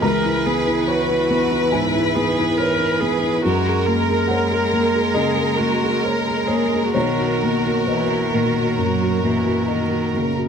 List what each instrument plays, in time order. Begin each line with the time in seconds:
0.02 felt piano C#2 A#5, cello E3, viola A#4, violin section B4
0.25 felt piano E4
0.46 felt piano B3, viola G#4
0.67 felt piano E4
0.87 viola F#4, felt piano C#5
1.10 felt piano E4
1.30 felt piano B3
1.51 felt piano E4
1.72 felt piano G#2 G#5, viola E4
1.95 felt piano E4
2.16 felt piano B3, viola G#4
2.39 felt piano E4
2.58 viola A#4, felt piano C#5
2.80 felt piano E4
3.00 felt piano B3, viola G#4
3.24 felt piano E4
3.43 felt piano F#2, cello G#3, viola F#4, violin section A#4
3.67 felt piano G#4
3.86 felt piano A#3, viola A#4
4.09 felt piano G#4
4.28 felt piano C#5 F#5
4.52 felt piano G#4
4.73 felt piano A#3
4.95 felt piano G#4
5.14 felt piano C#3 D#5, viola G#4
5.37 felt piano G#4
5.57 felt piano A#3, viola F#4
5.83 felt piano G#4
6.03 viola A#4, felt piano C#5
6.28 felt piano G#4
6.47 felt piano A#3 C#5, viola G#4
6.74 felt piano G#4
6.93 felt piano B1 C#5, cello D#3, viola F#4, violin section A#4
7.20 felt piano F#4
7.43 felt piano A#3
7.66 felt piano F#4
7.87 cello E3, felt piano B4 D#5
8.11 felt piano F#4
8.34 felt piano A#2, cello D#3
8.57 felt piano F#4
8.78 felt piano F#2, cello F#3
9.03 felt piano F#4
9.23 felt piano A#2, cello E3
9.46 felt piano F#4
9.68 cello D#3, felt piano D#5
9.91 felt piano F#4
10.14 cello C#3, felt piano A#3
10.37 felt piano F#4